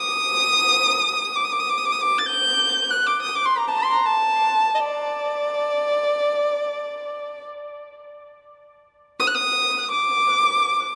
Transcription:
0.00 1.37 D#6 loud
1.36 1.46 D6 medium
1.44 1.54 D#6 medium
1.52 1.61 D6 medium
1.60 1.71 D#6 medium
1.69 1.79 D6 medium
1.77 1.87 D#6 medium
1.85 1.93 D6 medium
1.92 2.03 D#6 medium
2.01 2.20 D6 medium
2.18 2.27 A6 medium
2.26 2.92 G6 medium
2.91 3.08 F#6 medium
3.07 3.20 D6 medium
3.22 3.37 D#6 medium
3.36 3.47 D6 medium
3.46 3.59 C6 medium
3.58 3.69 A#5 medium
3.68 3.70 A5 medium
3.68 3.75 A#5 medium
3.74 3.80 A5 medium
3.79 3.93 C6 medium
3.91 4.07 A#5 medium
4.06 4.77 A5 medium
4.75 4.82 D#5 soft
4.81 7.48 D5 medium
9.20 9.29 D#6 medium
9.27 9.36 F#6 medium
9.34 9.91 D#6 medium
9.91 10.95 D6 medium

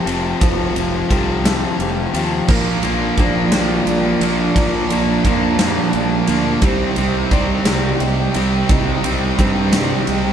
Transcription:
0.00 0.42 F3 medium
0.00 6.59 F4 medium
0.00 1.49 G4 medium
0.00 0.39 C5 medium
0.00 2.44 C5 medium
0.00 0.39 G5 medium
0.00 2.45 A5 medium
0.06 0.33 F1 loud
0.06 0.38 F2 medium
0.06 0.39 C3 loud
0.06 0.40 F3 loud
0.06 1.10 C4 medium
0.06 ride medium
0.39 0.68 F1 loud
0.39 0.73 F2 loud
0.39 0.74 C3 loud
0.39 0.76 F3 loud
0.39 0.77 F3 medium
0.39 1.10 C5 loud
0.39 2.47 F5 medium
0.39 kick loud
0.39 ride loud
0.74 1.02 F1 medium
0.74 1.08 F2 medium
0.74 1.09 C3 loud
0.74 1.10 F3 loud
0.74 2.83 F3 medium
0.74 ride medium
1.09 1.64 C2 loud
1.09 1.42 F2 medium
1.09 1.42 C3 loud
1.09 1.44 F3 loud
1.09 2.13 C4 medium
1.09 1.79 A4 medium
1.09 kick medium
1.09 ride medium
1.43 2.12 F2 loud
1.43 2.13 C3 loud
1.43 2.14 F3 loud
1.43 2.49 A3 medium
1.43 snare loud
1.43 ride loud
1.79 2.06 F1 medium
1.79 3.87 G4 medium
1.79 2.48 C5 medium
1.79 ride medium
2.13 2.40 D#2 medium
2.13 2.46 F2 medium
2.13 2.46 C3 medium
2.13 2.48 F3 loud
2.13 2.48 C4 medium
2.13 ride medium
2.48 2.75 A#1 loud
2.48 2.83 A#2 loud
2.48 4.21 A#2 medium
2.48 2.83 F3 loud
2.48 2.84 A#3 loud
2.48 3.17 A#4 medium
2.48 6.59 A#4 medium
2.48 6.59 D5 medium
2.48 4.54 G5 medium
2.48 kick loud
2.48 crash loud
2.83 3.09 A#1 medium
2.83 3.17 A#2 medium
2.83 4.56 D3 medium
2.83 3.18 F3 medium
2.83 3.18 A#3 medium
2.83 ride medium
3.17 3.44 A#1 loud
3.17 3.51 A#2 medium
3.17 3.52 F3 medium
3.17 3.52 A#3 medium
3.17 4.20 D4 medium
3.17 3.86 C5 medium
3.17 kick medium
3.17 ride medium
3.52 3.79 A#1 loud
3.52 4.20 A#2 loud
3.52 4.21 F3 loud
3.52 5.59 G3 medium
3.52 4.22 A#3 loud
3.52 snare loud
3.52 ride loud
3.86 4.13 A#1 loud
3.86 5.59 F4 medium
3.86 4.54 D5 medium
3.86 ride medium
4.21 4.47 A#1 medium
4.21 4.55 A#2 medium
4.21 4.56 F3 medium
4.21 4.56 A#3 medium
4.21 5.24 D4 medium
4.21 ride medium
4.55 4.82 A#1 loud
4.55 6.28 A#2 medium
4.55 4.90 A#2 loud
4.55 4.91 F3 loud
4.55 4.91 A#3 loud
4.55 5.24 D5 medium
4.55 6.60 A5 medium
4.55 kick loud
4.55 ride loud
4.90 5.16 A#1 medium
4.90 5.24 A#2 medium
4.90 6.63 D3 medium
4.90 5.25 F3 loud
4.90 5.26 A#3 loud
4.90 ride medium
5.24 5.78 F2 loud
5.24 5.58 A#2 medium
5.24 5.59 F3 loud
5.24 5.60 A#3 loud
5.24 6.27 D4 medium
5.24 5.94 A#4 medium
5.24 kick medium
5.24 ride medium
5.59 6.27 A#2 loud
5.59 6.28 F3 loud
5.59 7.66 G3 medium
5.59 6.29 A#3 loud
5.59 snare loud
5.59 ride loud
5.93 6.20 A#1 loud
5.93 6.63 F4 medium
5.93 6.62 D5 medium
5.93 ride medium
6.27 6.55 D2 loud
6.27 6.61 A#2 medium
6.27 6.61 F3 medium
6.27 6.62 A#3 loud
6.27 6.63 D4 medium
6.27 ride medium
6.62 6.89 C2 loud
6.62 6.96 C3 loud
6.62 8.35 C3 medium
6.62 6.97 G3 loud
6.62 6.98 C4 loud
6.62 10.33 D#4 medium
6.62 10.33 G4 medium
6.62 7.31 C5 loud
6.62 8.67 C5 medium
6.62 10.33 G5 medium
6.62 kick loud
6.62 ride loud
6.96 7.24 C2 loud
6.96 7.31 C3 medium
6.96 8.69 D#3 medium
6.96 7.32 G3 loud
6.96 7.32 C4 loud
6.96 ride medium
7.31 7.58 C2 loud
7.31 7.65 C3 medium
7.31 7.66 G3 loud
7.31 7.66 C4 loud
7.31 8.35 C4 medium
7.31 8.00 D5 medium
7.31 kick medium
7.31 ride medium
7.65 7.92 C2 loud
7.65 8.34 C3 loud
7.65 9.73 G3 medium
7.65 8.35 G3 loud
7.65 8.35 C4 loud
7.65 snare loud
7.65 ride loud
8.00 8.27 C2 loud
8.00 10.08 G4 medium
8.00 8.68 D#5 medium
8.00 ride medium
8.34 8.62 C2 loud
8.34 8.68 C3 medium
8.34 8.70 G3 loud
8.34 9.38 C4 medium
8.34 8.70 C4 loud
8.34 ride medium
8.69 8.96 C2 loud
8.69 9.02 C3 loud
8.69 10.33 C3 medium
8.69 9.03 G3 loud
8.69 9.03 C4 loud
8.69 10.33 D#5 medium
8.69 9.38 D#5 medium
8.69 kick loud
8.69 ride loud
9.03 9.30 C2 loud
9.03 9.37 C3 medium
9.03 10.33 D#3 medium
9.03 9.39 G3 loud
9.03 9.38 C4 medium
9.03 ride medium
9.38 9.92 G2 loud
9.38 9.71 C3 medium
9.38 9.72 G3 loud
9.38 10.33 C4 medium
9.38 9.72 C4 loud
9.38 10.07 C5 medium
9.38 kick medium
9.38 ride loud
9.72 10.33 C3 loud
9.72 10.33 G3 loud
9.72 10.33 G3 medium
9.72 10.33 C4 loud
9.72 snare loud
9.72 ride loud
10.07 10.33 C2 medium
10.07 10.33 G4 medium
10.07 10.33 D#5 medium
10.07 ride medium

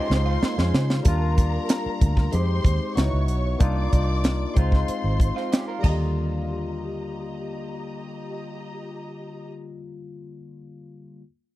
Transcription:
0.00 1.01 G#3 medium
0.00 0.25 C#4 medium
0.00 1.03 D#4 medium
0.00 1.04 F4 medium
0.00 0.24 G4 medium
0.00 1.02 C5 medium
0.00 1.03 C5 medium
0.00 0.39 D#5 loud
0.00 1.03 C6 loud
0.10 0.36 C#2 medium
0.10 snare medium
0.26 0.41 C4 medium
0.26 0.41 F4 medium
0.42 0.57 A#3 medium
0.42 0.57 D#4 medium
0.42 muted fingered electric bass stroke soft
0.42 snare medium
0.58 0.71 F2 medium
0.58 1.04 G#3 medium
0.58 1.03 C#4 medium
0.58 snare medium
0.74 1.00 C#3 loud
0.74 snare loud
0.90 snare medium
1.03 1.57 D#2 loud
1.03 2.29 G3 medium
1.03 2.30 A#3 medium
1.03 2.31 D4 medium
1.03 2.30 A#4 medium
1.03 2.30 A#5 loud
1.03 kick loud
1.03 closed hi-hat loud
1.08 2.32 F4 medium
1.38 kick medium
1.38 closed hi-hat medium
1.69 snare loud
1.69 closed hi-hat loud
1.86 muted fingered electric bass stroke soft
2.01 2.27 D2 medium
2.01 kick loud
2.01 closed hi-hat medium
2.17 kick medium
2.17 snare soft
2.32 2.59 F2 loud
2.32 2.96 G#3 medium
2.32 2.97 C4 medium
2.32 2.95 D#4 medium
2.32 2.98 G4 medium
2.32 2.96 C5 medium
2.32 2.96 C6 loud
2.32 closed hi-hat medium
2.65 2.78 D#2 medium
2.65 kick loud
2.65 closed hi-hat medium
2.95 3.10 C#2 loud
2.95 3.60 B3 medium
2.95 3.59 D#4 medium
2.95 3.61 E4 medium
2.95 3.61 F#4 medium
2.95 3.59 C#5 medium
2.95 3.59 C#6 medium
2.95 snare loud
2.95 closed hi-hat medium
3.13 3.29 C#2 medium
3.28 3.54 B1 loud
3.28 closed hi-hat medium
3.59 3.86 C2 loud
3.59 4.55 A#3 medium
3.59 4.56 D4 medium
3.59 4.56 D#4 medium
3.59 4.57 F4 loud
3.59 4.54 D5 medium
3.59 4.54 D6 medium
3.59 kick loud
3.59 closed hi-hat medium
3.93 4.44 C2 loud
3.93 kick medium
3.93 closed hi-hat medium
4.24 snare loud
4.24 closed hi-hat medium
4.54 4.82 C#2 loud
4.54 5.80 G#3 medium
4.54 5.81 C4 medium
4.54 5.82 D#4 medium
4.54 5.82 C5 medium
4.54 5.81 C6 medium
4.54 kick medium
4.54 closed hi-hat medium
4.59 5.83 F4 medium
4.72 kick medium
4.72 snare soft
4.88 muted fingered electric bass stroke soft
4.88 closed hi-hat loud
5.04 5.30 G#1 medium
5.20 kick medium
5.20 closed hi-hat medium
5.36 5.52 C4 medium
5.36 5.51 F4 medium
5.36 snare soft
5.52 5.68 C#4 medium
5.52 5.67 G4 medium
5.52 snare loud
5.52 closed hi-hat medium
5.68 5.83 F4 medium
5.68 5.83 A#4 medium
5.79 9.68 G3 medium
5.79 9.72 A#3 medium
5.84 9.74 D#2 medium
5.84 9.75 D3 medium
5.84 9.47 G4 medium
5.84 9.47 D#5 medium
5.84 9.47 A#5 medium
5.84 kick loud
5.84 crash medium
5.89 9.78 F4 medium

